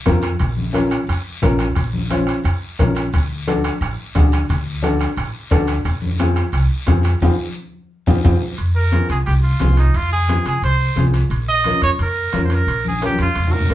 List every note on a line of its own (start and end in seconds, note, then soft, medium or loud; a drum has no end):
0.06 0.34 F2 loud
0.06 0.30 C4 medium
0.06 0.30 F4 medium
0.06 0.30 A#4 medium
0.06 bombo low medium
0.06 bombo rim medium
0.06 high conga medium
0.06 high timbale medium
0.06 low timbale medium
0.06 short guiro medium
0.22 bombo rim medium
0.22 high timbale medium
0.22 short guiro medium
0.39 0.95 A#1 medium
0.39 bombo low medium
0.39 bombo rim medium
0.39 high timbale medium
0.39 long guiro medium
0.57 high conga medium
0.73 0.97 C#4 medium
0.73 0.98 F4 medium
0.73 0.98 A#4 medium
0.73 bombo rim medium
0.73 high conga medium
0.73 high timbale medium
0.73 short guiro medium
0.90 bombo rim medium
0.90 high timbale medium
0.90 short guiro medium
1.07 1.22 F2 medium
1.07 bombo rim medium
1.07 high timbale medium
1.07 long guiro medium
1.42 1.70 A#1 loud
1.42 1.66 C#4 medium
1.42 1.66 F4 medium
1.42 1.67 A#4 medium
1.42 bombo low medium
1.42 bombo rim medium
1.42 high conga medium
1.42 high timbale medium
1.42 low timbale medium
1.42 short guiro medium
1.59 bombo rim medium
1.59 high timbale medium
1.59 short guiro medium
1.75 2.31 A#1 medium
1.75 bombo low medium
1.75 bombo rim medium
1.75 high timbale medium
1.75 long guiro medium
1.93 high conga medium
2.10 2.34 C#4 medium
2.10 2.35 F4 medium
2.10 2.35 C5 medium
2.10 bombo rim medium
2.10 high conga medium
2.10 high timbale medium
2.10 short guiro medium
2.27 bombo rim medium
2.27 high timbale medium
2.27 short guiro medium
2.44 2.58 F2 medium
2.44 bombo rim medium
2.44 high timbale medium
2.44 long guiro medium
2.78 3.06 A#1 medium
2.78 3.03 C#4 medium
2.78 3.03 F4 medium
2.78 3.03 A#4 medium
2.78 bombo low medium
2.78 bombo rim medium
2.78 high conga medium
2.78 high timbale medium
2.78 short guiro medium
2.95 bombo rim medium
2.95 high timbale medium
2.95 short guiro medium
3.13 3.68 D2 medium
3.13 bombo low medium
3.13 bombo rim medium
3.13 high timbale medium
3.13 long guiro medium
3.47 3.71 D4 medium
3.47 3.71 F#4 medium
3.47 3.71 A4 medium
3.47 bombo rim medium
3.47 high conga medium
3.47 high timbale medium
3.47 short guiro medium
3.64 bombo rim medium
3.64 high timbale medium
3.64 short guiro medium
3.81 3.95 A1 medium
3.81 bombo rim medium
3.81 high timbale medium
3.81 long guiro medium
4.15 4.43 D2 medium
4.15 4.39 D4 medium
4.15 4.39 F#4 medium
4.15 4.40 G#4 medium
4.15 bombo low medium
4.15 bombo rim medium
4.15 high conga medium
4.15 high timbale medium
4.15 low timbale medium
4.15 short guiro medium
4.32 bombo rim medium
4.32 high timbale medium
4.32 short guiro medium
4.49 5.04 D2 loud
4.49 bombo low medium
4.49 bombo rim medium
4.49 high timbale medium
4.49 long guiro medium
4.82 5.07 D4 medium
4.82 5.07 F#4 medium
4.82 5.07 A4 medium
4.82 bombo rim medium
4.82 high conga medium
4.82 high timbale medium
4.82 short guiro medium
5.00 bombo rim medium
5.00 high timbale medium
5.00 short guiro medium
5.16 5.31 A1 medium
5.16 bombo rim medium
5.16 high timbale medium
5.16 long guiro medium
5.50 5.79 D2 medium
5.50 5.75 D4 medium
5.50 5.75 F#4 medium
5.50 5.75 A4 medium
5.50 bombo low medium
5.50 bombo rim medium
5.50 high conga medium
5.50 high timbale medium
5.50 short guiro medium
5.67 bombo rim medium
5.67 high timbale medium
5.67 short guiro medium
5.85 6.40 F2 medium
5.85 bombo low medium
5.85 bombo rim medium
5.85 high timbale medium
5.85 long guiro medium
6.02 high conga medium
6.18 6.43 C4 medium
6.18 6.43 F4 medium
6.18 6.44 G#4 medium
6.18 bombo rim medium
6.18 high conga medium
6.18 high timbale medium
6.18 short guiro medium
6.36 bombo rim medium
6.36 high timbale medium
6.36 short guiro medium
6.52 6.67 C2 medium
6.52 bombo rim medium
6.52 high timbale medium
6.52 long guiro medium
6.86 7.15 F2 medium
6.86 7.11 C4 medium
6.86 7.11 F4 medium
6.86 7.11 G#4 medium
6.86 bombo low medium
6.86 bombo rim medium
6.86 high conga medium
6.86 high timbale medium
6.86 low timbale medium
6.86 short guiro medium
7.03 bombo rim medium
7.03 high timbale medium
7.03 short guiro medium
7.21 7.34 F2 medium
7.21 7.33 C4 medium
7.21 7.33 F4 medium
7.21 7.33 G#4 medium
7.21 bombo low medium
7.21 high conga medium
7.21 high timbale medium
7.21 long guiro medium
8.06 8.20 F2 medium
8.06 8.18 C4 medium
8.06 8.18 F4 medium
8.06 8.18 G#4 medium
8.06 bombo low loud
8.06 high conga medium
8.06 high timbale medium
8.06 long guiro medium
8.23 8.37 F2 medium
8.23 8.35 C4 medium
8.23 8.35 F4 medium
8.23 8.35 G#4 medium
8.23 bombo low loud
8.23 high conga loud
8.23 high timbale medium
8.23 long guiro medium
8.58 8.99 F2 medium
8.58 high timbale medium
8.58 long guiro medium
8.76 9.07 A#4 medium
8.92 9.16 C4 medium
8.92 9.16 F4 medium
8.92 9.16 G#4 medium
8.92 high conga medium
8.92 high timbale medium
8.92 short guiro medium
9.09 9.23 C2 medium
9.09 9.18 G#4 medium
9.09 high timbale medium
9.09 short guiro medium
9.26 9.54 C2 medium
9.26 9.34 G4 medium
9.26 high timbale medium
9.26 long guiro medium
9.43 9.75 F4 medium
9.60 9.88 C2 medium
9.60 9.84 C4 medium
9.60 9.85 F4 medium
9.60 9.85 G#4 medium
9.60 high conga medium
9.60 high timbale medium
9.60 low timbale medium
9.60 short guiro medium
9.77 9.98 D#4 medium
9.77 high timbale medium
9.77 short guiro medium
9.94 10.35 F2 medium
9.94 10.12 F4 medium
9.94 high timbale medium
9.94 long guiro medium
10.13 10.44 G#4 medium
10.28 10.53 C4 medium
10.28 10.53 F4 medium
10.28 10.53 G#4 medium
10.28 high conga medium
10.28 high timbale medium
10.28 short guiro medium
10.46 10.59 C2 medium
10.46 10.63 G#4 medium
10.46 high timbale medium
10.46 short guiro medium
10.62 10.90 C2 medium
10.62 11.11 C5 medium
10.62 high timbale medium
10.62 long guiro medium
10.96 11.24 C2 medium
10.96 11.21 C4 medium
10.96 11.21 F4 medium
10.96 11.21 G#4 medium
10.96 high conga medium
10.96 high timbale medium
10.96 short guiro medium
11.14 high timbale medium
11.14 short guiro medium
11.30 11.71 A#1 medium
11.30 high timbale medium
11.30 long guiro medium
11.49 11.80 D#5 loud
11.64 11.89 C#4 medium
11.64 11.89 F4 medium
11.64 11.90 A#4 medium
11.64 high conga medium
11.64 high timbale medium
11.64 short guiro medium
11.82 11.96 F2 medium
11.82 11.91 C#5 loud
11.82 high timbale medium
11.82 short guiro medium
11.99 12.26 F2 medium
11.99 high timbale medium
11.99 long guiro medium
12.03 12.42 A#4 medium
12.33 12.61 F2 medium
12.33 12.57 C#4 medium
12.33 12.57 F4 medium
12.33 12.57 A#4 medium
12.33 high conga medium
12.33 high timbale medium
12.33 low timbale medium
12.33 short guiro medium
12.45 12.55 C5 medium
12.50 12.86 A#4 medium
12.50 high timbale medium
12.50 short guiro medium
12.67 13.08 A#1 medium
12.67 high timbale medium
12.67 long guiro medium
12.85 13.02 G#4 medium
12.85 high conga medium
13.01 13.25 C#4 medium
13.01 13.26 F4 medium
13.01 13.26 A#4 medium
13.01 high conga medium
13.01 high timbale medium
13.01 short guiro medium
13.06 13.20 G4 medium
13.14 high conga medium
13.19 13.33 F2 medium
13.19 13.54 F4 medium
13.19 high timbale medium
13.19 short guiro medium
13.35 13.63 F2 medium
13.35 low conga medium
13.35 high timbale medium
13.35 long guiro medium
13.47 low conga medium
13.52 13.74 A#4 medium
13.59 low conga medium
13.69 13.74 F2 medium
13.69 13.74 C#4 medium
13.69 13.74 F4 medium
13.69 13.74 A#4 medium
13.69 high timbale medium
13.69 low timbale medium
13.69 short guiro medium